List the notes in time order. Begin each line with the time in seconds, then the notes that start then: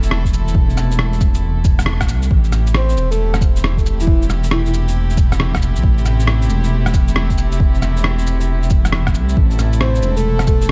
Already playing: E1 C3 A3 E4 A4
0.03 shaker
0.11 cross-stick
0.25 kick, shaker
0.33 cabasa
0.48 shaker
0.55 kick
0.70 shaker
0.77 cross-stick, cabasa
0.91 shaker
0.99 cross-stick
1.13 shaker
1.21 E1, kick, cabasa
1.34 shaker
1.64 kick, cabasa
1.79 cross-stick, shaker
1.86 E1, cross-stick
2.01 kick, cross-stick, shaker
2.08 C2, cabasa
2.22 shaker
2.31 A1 C3 A3 E4 G4, kick
2.44 shaker
2.52 cross-stick, cabasa
2.67 shaker
2.74 C5, cross-stick
2.89 shaker
2.97 E1, cabasa
3.11 A4, shaker
3.34 cross-stick, shaker
3.41 kick, cabasa
3.56 shaker
3.64 cross-stick
3.77 kick, shaker
3.86 cabasa
4.00 E4, shaker
4.07 kick
4.22 shaker
4.30 cross-stick, cabasa
4.44 shaker
4.51 E4, cross-stick
4.65 E4, shaker
4.73 E1, cabasa
4.88 shaker
5.10 shaker
5.17 kick, cabasa
5.32 cross-stick, shaker
5.40 cross-stick
5.54 kick, cross-stick, shaker
5.61 E1, cabasa
5.76 C2, shaker
5.83 A1, kick
5.98 shaker
6.06 cross-stick, cabasa
6.20 shaker
6.27 cross-stick
6.42 shaker
6.50 E1, cabasa
6.64 shaker
6.86 cross-stick, shaker
6.94 kick, cabasa
7.08 shaker
7.16 cross-stick
7.30 kick, shaker
7.38 cabasa
7.52 shaker
7.60 kick
7.75 shaker
7.82 cross-stick, cabasa
7.97 shaker
8.04 cross-stick
8.19 shaker
8.26 E1, cabasa
8.41 shaker
8.63 shaker
8.70 kick, cabasa
8.85 cross-stick, shaker
8.92 E1, cross-stick
9.07 kick, cross-stick, shaker
9.15 C2, cabasa
9.29 shaker
9.37 A1 A4, kick
9.51 shaker
9.59 cross-stick, cabasa
9.73 shaker
9.80 C5, cross-stick
9.95 shaker
10.02 E1, cabasa
10.17 A4, shaker
10.39 cross-stick, shaker
10.46 A4, kick, cabasa
10.61 shaker